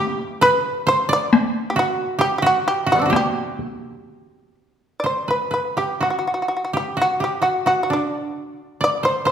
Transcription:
0.00 0.39 G4 medium
0.00 1.82 G4 medium
0.00 0.28 B4 medium
0.00 0.83 D5 medium
0.41 0.93 B4 medium
0.41 0.85 B4 loud
0.87 2.58 C5 medium
0.87 1.09 C5 medium
1.09 2.69 D5 medium
1.13 1.53 D5 loud
1.33 taiko rim medium
1.33 taiko high medium
1.70 1.77 G4 medium
1.76 2.25 F#4 medium
1.76 2.20 F#4 medium
2.19 2.48 G4 medium
2.19 2.37 G4 medium
2.38 2.86 F#4 medium
2.38 2.44 G4 medium
2.46 2.66 F#4 medium
2.68 2.88 G4 medium
2.86 3.05 F#4 medium
2.92 3.12 G3 soft
2.92 3.12 F#4 medium
2.96 5.10 B3 soft
2.96 5.34 C4 soft
3.02 5.44 D4 soft
3.06 5.17 F#4 soft
3.10 5.14 G4 medium
3.10 taiko rim medium
3.10 taiko high medium
3.16 4.54 G4 medium
3.59 taiko high soft
5.00 5.34 C5 medium
5.00 5.05 D5 medium
5.06 5.28 C5 medium
5.28 5.50 B4 soft
5.28 5.53 B4 medium
5.51 7.28 B4 medium
5.51 5.76 B4 medium
5.77 6.07 G4 medium
5.77 6.01 G4 medium
6.01 6.79 F#4 medium
6.01 6.09 F#4 medium
6.10 6.17 F#4 soft
6.19 6.25 F#4 soft
6.27 6.33 F#4 soft
6.34 6.41 F#4 soft
6.42 6.47 F#4 soft
6.48 6.55 F#4 soft
6.57 6.63 F#4 soft
6.65 6.71 F#4 soft
6.73 7.03 G4 medium
6.73 6.97 G4 medium
6.97 7.26 F#4 medium
7.02 7.21 F#4 medium
7.20 7.48 G4 medium
7.20 7.42 G4 medium
7.42 7.66 F#4 medium
7.42 7.65 F#4 medium
7.66 9.32 F#4 medium
7.66 7.82 F#4 medium
7.83 7.90 F#4 medium
7.90 9.32 D4 medium
7.90 8.57 D4 medium
8.81 9.32 D5 medium
8.81 9.04 D5 medium
9.03 9.25 C5 medium
9.25 9.32 C5 medium

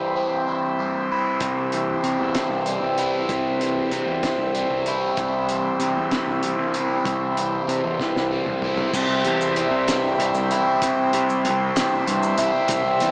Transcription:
0.00 1.41 C3 medium
0.00 0.48 E3 medium
0.00 0.79 G3 medium
0.00 0.16 C4 medium
0.00 1.11 E4 medium
0.00 8.91 E4 medium
0.00 8.90 G4 medium
0.00 8.91 C5 medium
0.00 8.91 E5 medium
0.16 2.03 C4 medium
0.48 1.73 E3 medium
0.79 2.66 G3 medium
1.11 2.99 E4 medium
1.40 1.92 C2 medium
1.40 3.30 C3 medium
1.40 kick loud
1.40 closed hi-hat medium
1.72 2.36 E3 medium
1.72 closed hi-hat medium
2.03 2.16 C3 medium
2.03 3.92 C4 medium
2.03 closed hi-hat medium
2.19 2.32 E2 medium
2.35 3.61 E3 medium
2.35 kick medium
2.35 snare loud
2.35 closed hi-hat medium
2.49 2.75 C2 medium
2.66 4.55 G3 medium
2.66 closed hi-hat medium
2.82 3.20 C2 medium
2.98 4.87 E4 medium
2.98 closed hi-hat medium
3.29 3.80 C2 medium
3.29 5.19 C3 medium
3.29 kick loud
3.29 closed hi-hat medium
3.61 4.24 E3 medium
3.61 closed hi-hat medium
3.91 4.04 C3 medium
3.91 5.82 C4 medium
3.91 closed hi-hat medium
4.06 4.20 E2 medium
4.23 5.52 E3 medium
4.23 kick medium
4.23 snare loud
4.23 closed hi-hat medium
4.38 4.64 C2 medium
4.55 6.44 G3 medium
4.55 closed hi-hat medium
4.70 5.08 C2 medium
4.86 6.75 E4 medium
4.86 closed hi-hat medium
5.17 5.68 C2 medium
5.17 7.06 C3 medium
5.17 kick loud
5.17 closed hi-hat medium
5.49 6.13 E3 medium
5.49 closed hi-hat medium
5.79 5.93 C3 medium
5.79 7.38 C4 medium
5.79 closed hi-hat medium
5.95 6.08 E2 medium
6.11 7.36 E3 medium
6.11 kick medium
6.11 snare loud
6.11 closed hi-hat medium
6.27 6.52 C2 medium
6.43 8.00 G3 medium
6.43 closed hi-hat medium
6.58 6.96 C2 medium
6.74 8.32 E4 medium
6.74 closed hi-hat medium
7.05 7.56 C2 medium
7.05 8.63 C3 medium
7.05 kick loud
7.05 closed hi-hat medium
7.37 7.98 E3 medium
7.37 closed hi-hat medium
7.67 7.81 C3 medium
7.67 8.93 C4 medium
7.67 closed hi-hat medium
7.85 7.97 E2 medium
8.00 8.94 E3 medium
8.00 kick medium
8.00 snare soft
8.16 8.41 C2 medium
8.16 snare soft
8.31 8.94 G3 medium
8.46 8.85 C2 medium
8.46 mid tom medium
8.62 8.95 E4 medium
8.62 mid tom medium
8.78 floor tom medium
8.92 9.06 C2 medium
8.92 10.83 C3 medium
8.92 13.11 E4 medium
8.92 13.11 G4 medium
8.92 13.11 C5 medium
8.92 13.11 E5 loud
8.92 kick loud
8.92 crash loud
8.92 maracas medium
9.09 9.22 C2 medium
9.24 9.63 E2 medium
9.24 10.20 G3 medium
9.24 closed hi-hat medium
9.41 maracas medium
9.56 11.45 C4 medium
9.56 closed hi-hat medium
9.71 10.09 C3 medium
9.88 11.76 E3 medium
9.88 snare loud
9.88 closed hi-hat medium
9.88 maracas medium
10.19 10.31 C2 loud
10.19 11.13 G3 medium
10.19 closed hi-hat medium
10.34 10.60 C2 medium
10.34 maracas medium
10.51 12.38 E4 medium
10.51 closed hi-hat medium
10.82 12.69 C3 medium
10.82 kick loud
10.82 closed hi-hat medium
10.82 maracas medium
11.13 11.46 C3 medium
11.13 12.06 G3 medium
11.13 closed hi-hat medium
11.29 maracas medium
11.45 11.70 C2 medium
11.45 13.11 C4 medium
11.45 closed hi-hat medium
11.76 13.11 E3 medium
11.76 snare loud
11.76 closed hi-hat medium
11.76 maracas medium
12.06 12.32 G2 medium
12.06 13.00 G3 medium
12.06 closed hi-hat medium
12.23 maracas medium
12.38 12.50 C2 medium
12.38 13.11 E4 medium
12.38 closed hi-hat medium
12.68 12.81 C2 medium
12.68 13.11 C3 medium
12.68 kick loud
12.68 closed hi-hat medium
12.68 maracas medium
12.84 12.97 C2 medium
13.00 13.11 E2 medium
13.00 13.11 G3 medium
13.00 closed hi-hat medium

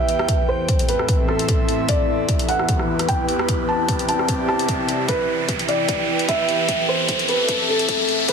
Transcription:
0.00 0.27 E2 medium
0.00 0.27 E3 medium
0.00 0.27 B3 medium
0.00 0.93 E4 medium
0.00 0.27 G4 medium
0.00 0.29 B4 medium
0.00 0.41 E5 medium
0.00 0.93 G5 medium
0.00 riser medium
0.09 closed hi-hat medium
0.19 cross-stick medium
0.28 1.87 A2 medium
0.28 3.45 E3 medium
0.28 1.87 C4 medium
0.28 2.53 A4 medium
0.28 1.87 A4 medium
0.28 kick loud
0.28 closed hi-hat medium
0.48 0.83 C5 medium
0.58 2.53 E5 medium
0.69 kick medium
0.69 closed hi-hat medium
0.79 closed hi-hat medium
0.89 1.23 B4 medium
0.89 closed hi-hat medium
0.99 1.89 C6 medium
0.99 cross-stick soft
1.09 kick loud
1.09 closed hi-hat medium
1.28 1.81 A4 medium
1.28 cross-stick soft
1.39 closed hi-hat medium
1.49 kick loud
1.49 closed hi-hat medium
1.69 closed hi-hat medium
1.89 3.47 E2 medium
1.89 3.47 B3 medium
1.89 4.12 E4 medium
1.89 5.05 G4 medium
1.89 2.41 D5 loud
1.89 kick medium
1.89 closed hi-hat medium
2.23 4.13 B4 medium
2.29 kick medium
2.29 closed hi-hat medium
2.39 closed hi-hat medium
2.49 3.01 F#5 medium
2.49 closed hi-hat medium
2.59 3.88 G4 medium
2.59 cross-stick soft
2.69 kick loud
2.69 closed hi-hat medium
2.79 cross-stick soft
2.99 cross-stick soft
2.99 closed hi-hat medium
3.09 3.61 G5 medium
3.09 kick loud
3.09 closed hi-hat medium
3.29 closed hi-hat medium
3.39 cross-stick medium
3.49 5.07 C2 medium
3.49 5.07 C3 medium
3.49 5.09 C4 medium
3.49 5.07 E4 medium
3.49 kick medium
3.49 closed hi-hat medium
3.69 4.03 A5 medium
3.77 5.73 D5 medium
3.89 5.73 G4 medium
3.89 kick medium
3.89 closed hi-hat medium
3.99 closed hi-hat soft
4.09 4.43 A5 medium
4.09 closed hi-hat soft
4.19 5.73 E5 loud
4.19 cross-stick medium
4.29 kick loud
4.29 closed hi-hat medium
4.49 5.01 A5 medium
4.49 cross-stick medium
4.59 closed hi-hat medium
4.69 kick loud
4.69 closed hi-hat medium
4.89 closed hi-hat medium
5.08 6.67 E2 medium
5.08 8.25 E3 medium
5.08 6.67 B3 medium
5.08 7.33 E4 medium
5.08 6.67 G4 medium
5.08 5.61 B4 loud
5.08 kick loud
5.08 closed hi-hat medium
5.27 7.29 G5 medium
5.49 kick loud
5.49 closed hi-hat medium
5.57 6.69 B4 medium
5.57 closed hi-hat medium
5.69 6.21 D5 medium
5.69 closed hi-hat soft
5.89 kick loud
5.89 closed hi-hat medium
6.19 closed hi-hat soft
6.29 6.81 E5 loud
6.29 kick loud
6.29 closed hi-hat medium
6.49 closed hi-hat medium
6.68 8.27 A2 medium
6.68 8.27 C4 medium
6.68 8.33 A4 medium
6.68 8.27 A4 medium
6.68 kick loud
6.68 closed hi-hat medium
6.87 7.23 C5 medium
6.87 8.33 E5 medium
7.09 kick loud
7.09 closed hi-hat medium
7.19 8.29 A5 medium
7.19 closed hi-hat soft
7.29 7.63 B4 medium
7.29 closed hi-hat soft
7.49 kick loud
7.49 closed hi-hat medium
7.69 8.21 A4 loud
7.79 closed hi-hat medium
7.89 kick loud
7.89 closed hi-hat medium
8.09 closed hi-hat medium
8.28 8.33 E2 medium
8.28 8.33 E3 medium
8.28 8.33 B3 medium
8.28 8.33 E4 medium
8.28 8.33 G4 medium
8.28 8.33 B4 loud
8.28 kick loud
8.28 closed hi-hat medium

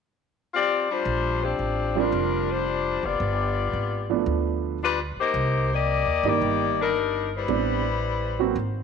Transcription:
0.53 0.87 C4 medium
0.53 0.87 F4 medium
0.53 0.87 G4 medium
0.53 0.87 D5 loud
0.90 1.43 G3 medium
0.90 1.42 D4 medium
0.90 1.43 F4 medium
0.90 1.43 C5 medium
1.05 1.55 A#1 medium
1.43 1.96 F3 medium
1.43 1.96 C4 medium
1.43 1.97 D4 medium
1.43 1.96 G4 medium
1.59 2.09 A1 medium
1.96 2.63 F3 medium
1.96 2.63 G3 medium
1.96 2.50 G3 medium
1.96 2.63 C4 medium
1.96 2.64 D4 medium
1.96 2.50 D4 medium
1.96 2.49 F4 medium
1.96 2.50 A#4 medium
2.12 2.99 F1 medium
2.50 3.04 G3 medium
2.50 3.04 D4 medium
2.50 3.03 F4 medium
2.50 3.03 C5 medium
3.03 3.19 F#1 medium
3.03 4.11 B3 medium
3.03 4.11 F4 medium
3.03 4.11 G4 medium
3.03 4.11 D5 medium
3.20 3.70 G1 medium
3.73 4.23 G#1 medium
4.10 4.77 F3 medium
4.10 4.77 A3 medium
4.10 4.78 B3 medium
4.10 4.78 D4 medium
4.26 5.13 D2 medium
4.83 4.99 G3 medium
4.83 4.99 D4 medium
4.83 4.99 F4 medium
4.83 4.99 B4 medium
5.17 5.69 A#3 medium
5.17 5.69 D#4 medium
5.17 5.68 G4 medium
5.17 5.69 C5 medium
5.17 muted upright bass stroke soft
5.34 6.02 C2 medium
5.73 6.25 A#3 medium
5.73 6.26 G4 medium
5.73 6.26 D5 medium
5.73 6.26 D#5 loud
6.06 6.22 D#2 medium
6.23 6.40 G2 medium
6.23 6.92 D#3 medium
6.23 6.92 G3 medium
6.23 6.93 A#3 medium
6.23 6.79 A#3 medium
6.23 6.92 D5 medium
6.27 6.80 D#4 medium
6.27 6.80 G4 medium
6.27 6.80 D5 loud
6.42 7.45 G1 medium
6.80 7.29 G3 medium
6.80 7.29 D4 medium
6.80 7.29 D#4 medium
6.80 7.29 A#4 medium
7.36 8.58 G3 medium
7.36 8.58 E4 medium
7.36 8.58 B4 medium
7.36 8.83 C5 medium
7.48 8.52 A1 medium
7.48 7.82 G3 medium
7.48 7.82 B3 medium
7.48 7.82 C4 medium
7.48 7.82 D4 medium
8.39 8.54 F#3 medium
8.39 8.55 A#3 medium
8.39 8.55 C4 medium
8.39 8.55 F#4 medium
8.56 8.83 G#1 medium

